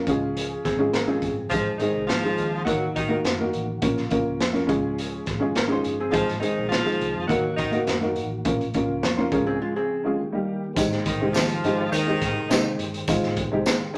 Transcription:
Already playing: F3
0.07 C#2 C#3 G#3 C#4 F4 G#4, kick, closed hi-hat
0.37 closed hi-hat
0.65 G#1 C4 G#4, kick, snare, closed hi-hat
0.78 G#3 C#4 F4 G#4
0.93 G#1 C#4 A#4, snare, closed hi-hat
1.07 G#3 C4 C#4 F4 G#4
1.22 G1, kick, closed hi-hat
1.49 G#1 D#3 F3 G#3 C4 D#4 F4 G#4, kick, closed hi-hat
1.53 G#4
1.78 D#3 G#3 C4 D#4 G#4, closed hi-hat
1.95 C2
2.07 G#2 F3 F4, snare, closed hi-hat
2.23 G#3 C4 D#4 G#4
2.38 D#2, closed hi-hat
2.65 D#2 F#3 A#3 D#4 F#4 A#4, kick, closed hi-hat
2.96 D#2 D#3 D#4, kick, closed hi-hat
3.09 A#3 D#4 F#4 A#4
3.25 F#2, snare, closed hi-hat
3.38 A#3 D#4 F#4 A#4
3.53 A1, closed hi-hat
3.82 A#1 C#3 F3 A#3 C#4 F4 A#4, kick, closed hi-hat
3.97 snare
4.10 A#3 C#4 F4 A#4, kick, closed hi-hat
4.26 C#2
4.41 F2, snare, closed hi-hat
4.53 A#3 C#4 F4 A#4, snare
4.67 C#2 G#3 C#4 F4 G#4, kick, closed hi-hat
4.98 closed hi-hat
5.26 G#1, kick, snare, closed hi-hat
5.40 G#3 C#4 F4 G#4
5.55 G#1 C#4 A#4, snare, closed hi-hat
5.67 G#3 C#4 F4 G#4
5.72 D#4 C5
5.84 G1, closed hi-hat
6.00 C4 G#4
6.11 G#1 D#3 F3 G#3 C4 D#4 F4 G#4, kick, closed hi-hat
6.15 C4
6.29 snare, closed hi-hat
6.39 D#3 G#3 C4 D#4 G#4, closed hi-hat
6.58 A#1
6.69 F3 F4, snare, closed hi-hat
6.84 G#3 C4 D#4 G#4, snare
7.01 C2, closed hi-hat
7.16 F2
7.27 D#2 F#3 A#3 D#4 F#4 A#4, kick, closed hi-hat
7.31 A#3 F#4
7.57 D#2 D#3 D#4, kick, closed hi-hat
7.71 A#3 D#4 F#4 A#4, closed hi-hat
7.87 F#2, snare, closed hi-hat
8.01 A#3 D#4 F#4 A#4
8.16 A1, closed hi-hat
8.45 A#1 C#3 F3 A#3 C#4 F4 A#4, kick, closed hi-hat
8.61 closed hi-hat
8.74 A#3 C#4 F4 A#4, kick, closed hi-hat
8.89 C#2
9.03 F2 F4 C#5, snare, closed hi-hat
9.17 A#3 C#4 D#4 F4 A#4 C5
9.30 C#2 C#3 G#3 C#4 F4 G#4 A#4, kick, closed hi-hat
9.47 C4 G#4
9.62 G#3 F4
9.76 C4 G#4
10.04 G#3 C#4 F4 G#4
10.19 D#3 G3 A#3 G4
10.32 G3 A#3 D#4 G4
10.73 G#1 D#3 G#3 C4 G4 C5, kick, closed hi-hat, tambourine
10.77 D#4 G4
10.92 snare
11.06 D#3 D#4, kick, closed hi-hat
11.19 C2 G#3 C4 D#4 G4
11.33 D#2 F3 F4, snare, closed hi-hat, tambourine
11.49 closed hi-hat
11.64 G#2 G#3 C4 D#4 G4, closed hi-hat
11.92 D#2 D#3 D#4, closed hi-hat, tambourine
12.07 G#3 C4 D#4 G4
12.21 G#2, kick, snare, closed hi-hat
12.49 C3 G#3 C4 D#4 G4, snare, closed hi-hat, tambourine
12.78 G1, closed hi-hat
12.94 closed hi-hat
13.08 G#1 G#3 C4 D#4 F4, kick, closed hi-hat, tambourine
13.23 snare
13.37 kick, closed hi-hat
13.51 C2 G#3 C4 D#4 G4
13.66 snare, closed hi-hat, tambourine
13.80 muted fingered electric bass stroke
13.94 D#2 G#3 C4

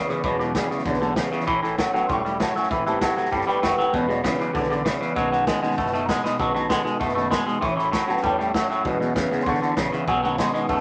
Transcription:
0.08 E2 C#3 B3 C#4 G#4 B5 D6, snare
0.22 E1 E2 B2 E3 F#3 G#3 B3 C#4 G#4 C#5 B5 D6, kick, snare
0.38 E2 B2 B3 C#4 G#4 B5 D6, snare
0.55 E2 C#3 C#4 G#4 D5 B5, kick, snare, hi-hat pedal
0.69 E2 C#3 B3 C#4 G#4, muted upright bass stroke, snare
0.78 snare
0.85 B1 E2 D3 E3 G#3 B3 C#4 G#4, kick, snare
0.93 snare
1.00 E2 D3 F#3 G#3 C#4 G#4, snare
1.15 E2 C#3 G#3 B3 C#4 G#4, kick, snare, hi-hat pedal
1.31 E2 C#3 B3 C#4 G#4, muted upright bass stroke, snare
1.40 snare
1.47 A1 A2 E3 F#3 A3 C#4 A4, kick, snare
1.62 A2 E3 F#3 A3 C#4 A4, snare
1.77 A2 F#3 A3 C#4 A4, kick, snare, hi-hat pedal
1.93 A2 F#3 A3 B3 C#4 A4, muted upright bass stroke, snare
2.07 E1 A2 E3 F#3 G3 A3 C#4 A4 C6, kick, snare
2.12 C#6
2.24 A2 F#3 G3 A3 C#4 A4 B5, snare
2.40 A2 F#3 A3 C#4 A4 A5, kick, snare, hi-hat pedal
2.55 A2 F#3 A3 C#4 A4 G#5, muted upright bass stroke, snare
2.63 snare
2.70 A1 A2 E3 G3 C4 E4 A4 B5, kick, snare
2.86 A2 E3 G3 B3 C4 E4 A4 A5, snare
3.01 A2 F#3 G3 C4 E4 A4 A5, kick, snare, hi-hat pedal
3.16 A2 F#3 G3 C4 E4 A4, muted upright bass stroke, snare
3.25 snare
3.32 G1 A2 E3 G3 C4 E4 A4, kick, snare
3.41 F#5, snare
3.47 A2 G3 E4 A4 B4 G5, muted upright bass stroke, snare
3.62 F#1 A2 F#3 G3 C4 E4 A4 B4 G5, kick, snare, hi-hat pedal
3.78 A2 F#3 C4 E4 A4 B4 G5, muted upright bass stroke, snare
3.82 G3
3.93 E1 E2 B2 E3 G#3 B3 C#4 G#4 D5 B5, kick, snare
4.08 E2 B2 F#3 G#3 C#4 G#4 C#5 D5 B5, snare
4.12 B3
4.24 E2 C#3 G#3 B3 C#4 G#4 D5 B5, kick, snare, hi-hat pedal
4.39 E2 C#3 B3 C#4 G#4 B5 D6, muted upright bass stroke, snare
4.53 B1 E2 D3 E3 G#3 B3 C#4 G#4 B5 D6, kick, snare
4.63 snare
4.70 E2 D3 B3 C#4 G#4 B5 D6, snare
4.84 E2 C#3 G#3 C#4 G#4 D5 B5, kick, snare, hi-hat pedal
4.99 E2 C#3 B3 C#4 G#4, muted upright bass stroke, snare
5.15 B1 B2 D#3 F#3 G#3 B3 C#4 D#4 F#4, kick, snare
5.31 B2 F#3 B3 D#4 F#4, snare
5.45 B2 G#3 B3 D#4 F#4, kick, snare, hi-hat pedal
5.60 B2 D#3 G#3 B3 C#4 D#4 F#4, muted upright bass stroke, snare
5.70 snare
5.76 F#1 B2 G#3 A3 B3 D#4 F#4, kick, snare
5.86 snare
5.92 B2 A3 B3 D#4 F#4, snare
6.05 B2 G#3 D#5 A#5, kick, snare, hi-hat pedal
6.10 D#4 F#4 B5
6.22 B2 G#3 B3 D#4 F#4 D#5 B5, muted upright bass stroke, snare
6.38 B1 B2 D#3 F#3 G#3 B3 C#4 D#4 F#4 F#5 A5, kick, snare
6.53 B2 F#3 B3 D#4 F#4 F#5 A5, snare
6.68 B2 G#3 B3 D#4 A4 F#5, kick, snare, hi-hat pedal
6.83 B2 G#3 B3 D#4 F#4, muted upright bass stroke, snare
6.99 F#1 B2 G#3 A3 B3 D#4 F#4, kick, snare
7.08 snare
7.14 B2 D#3 G#3 A3 B3 C#4 D#4 F#4, snare
7.31 B2 G#3 F#4, kick, snare, hi-hat pedal
7.46 B2 G#3 B3 D#4 F#4, muted upright bass stroke, snare
7.59 A1 A2 E3 C6, kick, snare
7.63 F#3 A3 C#4 F#4 C#6
7.76 A2 E3 F#3 A3 C#4 F#4, snare
7.92 A2 F#3 A3 C#4 B5, kick, snare, hi-hat pedal
7.96 F#4
8.07 A2 F#3 A3 B3 C#4 F#4 A5, muted upright bass stroke, snare
8.16 snare
8.22 E2 A2 E3 F#3 G3 A3 C#4 F#4 A5, kick, snare
8.38 A2 F#3 G3 A3 C#4 F#4, snare
8.54 A2 F#3 A3 C#4 F#4, kick, snare, hi-hat pedal
8.68 A2 F#3 A3 C#4 F#4, muted upright bass stroke, snare
8.72 F#3
8.84 E1 E2 B2 E3 F#3 G#3 B3 C#4 G#4, kick, snare
9.00 E2 B2 B3 C#4 G#4, muted upright bass stroke, snare
9.14 F#1 E2 C#3 E3 B3 C#4 G#4, kick, snare, hi-hat pedal
9.30 E2 C#3 B3 C#4 G#4, muted upright bass stroke, snare
9.39 C6, snare
9.46 G#1 E2 D3 E3 B3 C#4 G#4 C#6, kick, snare
9.54 snare
9.60 E2 D3 B3 C#4 G#4, muted upright bass stroke, snare
9.76 A1 E2 C#3 E3 B3 C#4 G#4, kick, snare, hi-hat pedal
9.91 E2 C#3 B3 C#4 G#4 B5, muted upright bass stroke, snare
10.07 B1 B2 F#3 B3 D#4 G#4 G#5, kick, snare
10.22 B2 D#3 F#3 G#3 B3 C#4 D#4 G#4 F#5, snare
10.35 B2 F#3 G#3 B3 D#4 F5, kick, snare, hi-hat pedal
10.40 G#4 F#5
10.53 B2 G#3 B3 D#4 G#4, muted upright bass stroke, snare
10.67 F#1 B2 D#3 F#3 G#3 A3 B3 C#4 D#4 G#4, kick, snare
10.77 snare

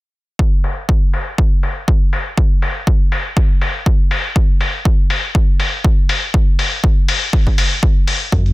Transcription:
0.39 kick
0.64 open hi-hat
0.89 kick
1.13 open hi-hat
1.38 kick
1.63 open hi-hat
1.88 kick
2.13 open hi-hat
2.38 kick
2.62 open hi-hat
2.87 kick
3.12 open hi-hat
3.37 kick, open hi-hat
3.61 open hi-hat
3.86 kick
4.11 open hi-hat
4.36 kick
4.61 open hi-hat
4.85 kick
5.10 open hi-hat
5.35 kick
5.60 open hi-hat
5.84 kick
6.09 open hi-hat
6.34 kick
6.59 open hi-hat
6.84 kick
7.08 open hi-hat
7.33 kick, open hi-hat
7.47 kick
7.58 open hi-hat
7.83 kick
8.07 open hi-hat
8.32 F#2, kick, closed hi-hat
8.46 closed hi-hat

